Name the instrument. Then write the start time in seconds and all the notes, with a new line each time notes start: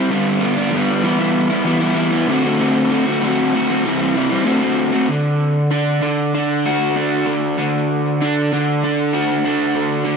overdriven electric guitar
0.11 G2 D3 G3 B3 D4
0.42 D3 G3 B3 D4
0.58 G3 B3 D4
0.72 G2 D3 G3 B3 D4
1.03 E3 G3 B3 E4
1.19 G3 B3 E4
1.50 G3 B3 E4
1.64 E3 G3 B3 E4
1.80 G3 B3 E4
1.95 E3 G3 B3 E4
2.11 G3 B3 E4
2.27 D3 A3 C4 F#4
2.43 A3 C4 F#4
2.58 D3 A3 C4 F#4
2.91 D3 A3 C4 F#4
3.06 A3 C4 F#4
3.22 D3 A3 C4 F#4
3.54 D3 A3 C4 F#4
3.68 A3 C4 F#4
3.84 C3 E3 G3 C4 E4
4.00 G3 C4 E4
4.15 E3 G3 C4 E4
4.30 G3 C4 E4
4.44 D3 A3 C4 F#4
4.60 A3 C4 F#4
4.92 A3 C4 F#4
5.08 D3
5.71 D4
6.02 D3
6.35 D4
6.66 F#4
6.96 D4
7.26 D3
7.59 D3
8.22 D4
8.52 D3
8.84 D4
9.13 F#4
9.45 D4
9.76 D3
10.06 D3